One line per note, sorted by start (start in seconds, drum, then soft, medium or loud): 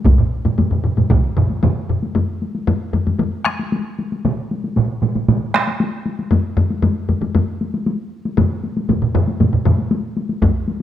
0.05 taiko loud
0.05 taiko low-mid medium
0.05 taiko mid medium
0.05 taiko high medium
0.18 taiko low-mid medium
0.18 taiko mid medium
0.45 taiko low-mid medium
0.45 taiko mid medium
0.45 taiko high medium
0.58 taiko low-mid medium
0.58 taiko mid medium
0.58 taiko high medium
0.71 taiko low-mid medium
0.71 taiko mid medium
0.84 taiko low-mid medium
0.84 taiko mid medium
0.97 taiko low-mid medium
0.97 taiko mid medium
0.97 taiko high soft
1.10 taiko loud
1.10 taiko low-mid medium
1.10 taiko mid loud
1.10 taiko high medium
1.37 taiko low-mid medium
1.37 taiko mid loud
1.50 taiko high medium
1.63 taiko low-mid loud
1.63 taiko mid loud
1.63 taiko high medium
1.89 taiko low-mid medium
1.89 taiko mid medium
2.03 taiko high soft
2.15 taiko low-mid medium
2.15 taiko high medium
2.42 taiko high soft
2.55 taiko high soft
2.67 taiko low-mid loud
2.67 taiko high medium
2.93 taiko low-mid medium
2.93 taiko high soft
3.07 taiko low-mid medium
3.07 taiko high soft
3.19 taiko low-mid medium
3.19 taiko high medium
3.45 taiko rim medium
3.45 taiko high soft
3.59 taiko high soft
3.72 taiko high medium
3.99 taiko high soft
4.12 taiko high soft
4.25 taiko mid loud
4.25 taiko high medium
4.51 taiko high medium
4.64 taiko high soft
4.76 taiko mid medium
4.76 taiko high medium
5.02 taiko mid medium
5.02 taiko high medium
5.15 taiko mid medium
5.15 taiko high medium
5.28 taiko mid loud
5.28 taiko high medium
5.54 taiko rim medium
5.54 taiko high medium
5.67 taiko high soft
5.80 taiko high medium
6.06 taiko high medium
6.19 taiko high soft
6.31 taiko low-mid loud
6.31 taiko high medium
6.57 taiko low-mid loud
6.57 taiko high medium
6.70 taiko high medium
6.82 taiko low-mid loud
6.82 taiko high medium
7.09 taiko low-mid medium
7.09 taiko high medium
7.22 taiko low-mid medium
7.22 taiko high soft
7.35 taiko low-mid loud
7.35 taiko high medium
7.61 taiko high medium
7.74 taiko high medium
7.86 taiko high medium
8.25 taiko high medium
8.37 taiko low-mid loud
8.37 taiko mid medium
8.37 taiko high medium
8.64 taiko high soft
8.77 taiko high medium
8.89 taiko low-mid medium
8.89 taiko mid medium
8.89 taiko high medium
9.02 taiko low-mid medium
9.02 taiko mid medium
9.14 taiko low-mid loud
9.14 taiko mid loud
9.14 taiko high medium
9.28 taiko high medium
9.40 taiko low-mid medium
9.40 taiko mid medium
9.40 taiko high medium
9.53 taiko low-mid medium
9.53 taiko mid medium
9.65 taiko low-mid loud
9.65 taiko mid loud
9.65 taiko high soft
9.78 taiko high soft
9.91 taiko high medium
10.17 taiko high medium
10.29 taiko high soft
10.42 taiko medium
10.42 taiko low-mid loud
10.42 taiko high medium
10.68 taiko high medium